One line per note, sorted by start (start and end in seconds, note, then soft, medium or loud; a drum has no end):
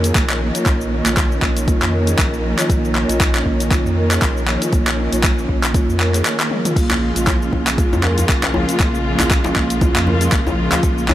0.00 0.12 F2 loud
0.00 6.72 D#3 medium
0.00 6.72 A#3 medium
0.00 6.73 C#4 medium
0.00 closed hi-hat medium
0.05 0.14 G#4 medium
0.05 shaker medium
0.15 0.51 A#1 loud
0.15 kick loud
0.15 clap loud
0.15 closed hi-hat soft
0.15 shaker medium
0.30 clap medium
0.30 shaker soft
0.41 0.54 F3 medium
0.55 0.61 F4 medium
0.55 closed hi-hat medium
0.55 shaker medium
0.66 1.02 A#1 loud
0.66 0.80 A#3 medium
0.66 kick loud
0.66 clap medium
0.66 closed hi-hat soft
0.66 shaker medium
0.81 shaker soft
1.05 1.39 A#1 medium
1.05 1.16 F4 medium
1.05 clap medium
1.05 closed hi-hat medium
1.05 shaker medium
1.17 kick loud
1.17 clap loud
1.17 closed hi-hat soft
1.17 shaker medium
1.31 1.41 C#4 medium
1.31 shaker soft
1.42 1.78 A#1 medium
1.42 1.56 A#3 medium
1.42 kick medium
1.42 clap medium
1.57 closed hi-hat medium
1.57 shaker medium
1.68 1.81 F4 medium
1.68 kick loud
1.68 closed hi-hat soft
1.68 shaker medium
1.82 2.15 F2 loud
1.82 clap medium
1.82 shaker soft
1.93 2.06 A#4 medium
2.07 2.17 G#4 medium
2.07 closed hi-hat medium
2.07 shaker medium
2.19 2.55 A#1 loud
2.19 kick loud
2.19 clap loud
2.19 closed hi-hat soft
2.19 shaker medium
2.34 shaker soft
2.44 2.58 F3 medium
2.58 2.64 F4 medium
2.58 clap medium
2.58 closed hi-hat medium
2.58 shaker medium
2.69 3.06 A#1 loud
2.69 2.83 A#3 medium
2.69 kick loud
2.69 closed hi-hat soft
2.69 shaker medium
2.85 shaker soft
2.95 clap medium
3.09 3.43 A#1 medium
3.09 3.20 F4 medium
3.09 closed hi-hat medium
3.09 shaker medium
3.20 kick loud
3.20 clap loud
3.20 closed hi-hat soft
3.20 shaker medium
3.35 3.45 C#4 medium
3.35 clap medium
3.35 shaker soft
3.46 3.82 A#1 medium
3.46 3.60 A#3 medium
3.46 kick medium
3.60 closed hi-hat medium
3.60 shaker medium
3.71 3.84 F4 medium
3.71 kick loud
3.71 clap medium
3.71 closed hi-hat soft
3.71 shaker medium
3.85 4.19 F2 loud
3.85 shaker soft
3.97 4.10 A#4 medium
4.11 4.21 G#4 medium
4.11 clap medium
4.11 closed hi-hat medium
4.11 shaker medium
4.22 4.58 A#1 loud
4.22 kick loud
4.22 clap loud
4.22 closed hi-hat soft
4.22 shaker medium
4.37 shaker soft
4.47 4.61 F3 medium
4.47 clap medium
4.62 4.68 F4 medium
4.62 closed hi-hat medium
4.62 shaker medium
4.73 5.09 A#1 loud
4.73 4.86 A#3 medium
4.73 kick loud
4.73 closed hi-hat soft
4.73 shaker medium
4.87 clap loud
4.87 shaker soft
5.13 5.46 A#1 medium
5.13 5.23 F4 medium
5.13 closed hi-hat medium
5.13 shaker medium
5.23 kick loud
5.23 clap loud
5.23 closed hi-hat soft
5.23 shaker medium
5.38 5.48 C#4 medium
5.38 shaker soft
5.49 5.85 A#1 medium
5.49 5.63 A#3 medium
5.49 kick medium
5.63 clap medium
5.63 closed hi-hat medium
5.63 shaker medium
5.74 5.88 F4 medium
5.74 kick loud
5.74 closed hi-hat soft
5.74 shaker medium
5.88 6.22 F2 loud
5.88 shaker soft
6.00 6.13 A#4 medium
6.00 clap medium
6.14 6.24 G#4 medium
6.14 clap soft
6.14 closed hi-hat medium
6.14 shaker medium
6.25 clap loud
6.25 closed hi-hat soft
6.25 shaker medium
6.40 clap medium
6.40 shaker soft
6.51 6.65 F3 medium
6.51 high tom medium
6.65 6.71 F4 medium
6.65 closed hi-hat medium
6.65 mid tom medium
6.65 shaker medium
6.76 7.12 A#1 loud
6.76 11.14 C#3 medium
6.76 11.14 F3 medium
6.76 11.14 G#3 medium
6.76 11.14 A#3 medium
6.76 6.90 A#3 medium
6.76 11.14 F4 medium
6.76 kick loud
6.76 closed hi-hat soft
6.76 crash medium
6.76 shaker medium
6.90 clap loud
6.90 djembe tone medium
6.90 shaker soft
7.16 7.50 A#1 medium
7.16 7.27 F4 medium
7.16 closed hi-hat medium
7.16 shaker medium
7.27 kick loud
7.27 clap loud
7.27 closed hi-hat soft
7.27 djembe tone medium
7.27 shaker medium
7.41 7.51 C#4 medium
7.41 shaker soft
7.53 7.89 A#1 medium
7.53 7.66 A#3 medium
7.53 kick medium
7.53 djembe tone medium
7.67 clap loud
7.67 closed hi-hat medium
7.67 shaker medium
7.78 7.91 F4 medium
7.78 kick loud
7.78 closed hi-hat soft
7.78 shaker medium
7.93 8.26 F2 loud
7.93 djembe tone loud
7.93 shaker soft
8.03 8.16 A#4 medium
8.03 clap medium
8.03 djembe slap medium
8.18 8.28 G#4 medium
8.18 closed hi-hat medium
8.18 djembe tone medium
8.18 shaker medium
8.29 8.65 A#1 loud
8.29 kick loud
8.29 clap loud
8.29 closed hi-hat soft
8.29 shaker medium
8.43 clap loud
8.43 djembe slap medium
8.43 shaker soft
8.54 8.68 F3 medium
8.54 djembe tone loud
8.69 8.75 F4 medium
8.69 closed hi-hat medium
8.69 shaker medium
8.80 9.16 A#1 loud
8.80 8.93 A#3 medium
8.80 kick loud
8.80 clap medium
8.80 closed hi-hat soft
8.80 djembe tone medium
8.80 shaker medium
8.95 shaker soft
9.19 9.53 A#1 medium
9.19 9.30 F4 medium
9.19 clap loud
9.19 closed hi-hat medium
9.19 djembe tone medium
9.19 shaker medium
9.31 kick loud
9.31 clap loud
9.31 closed hi-hat soft
9.31 shaker medium
9.44 9.55 C#4 medium
9.44 djembe slap medium
9.44 djembe tone medium
9.44 shaker soft
9.56 9.92 A#1 medium
9.56 9.69 A#3 medium
9.56 kick medium
9.56 clap medium
9.70 closed hi-hat medium
9.70 shaker medium
9.81 9.94 F4 medium
9.81 kick loud
9.81 closed hi-hat soft
9.81 djembe tone medium
9.81 shaker medium
9.96 10.29 F2 loud
9.96 clap loud
9.96 shaker soft
10.07 10.20 A#4 medium
10.07 djembe tone medium
10.21 10.31 G#4 medium
10.21 closed hi-hat medium
10.21 shaker medium
10.32 10.68 A#1 loud
10.32 kick loud
10.32 clap loud
10.32 closed hi-hat soft
10.32 shaker medium
10.47 djembe tone loud
10.47 shaker soft
10.58 10.72 F3 medium
10.72 10.78 F4 medium
10.72 clap loud
10.72 closed hi-hat medium
10.72 djembe slap medium
10.72 djembe tone medium
10.72 shaker medium
10.83 11.14 A#1 loud
10.83 10.97 A#3 medium
10.83 kick loud
10.83 closed hi-hat soft
10.83 shaker medium
10.98 shaker soft
11.08 clap medium
11.08 djembe tone loud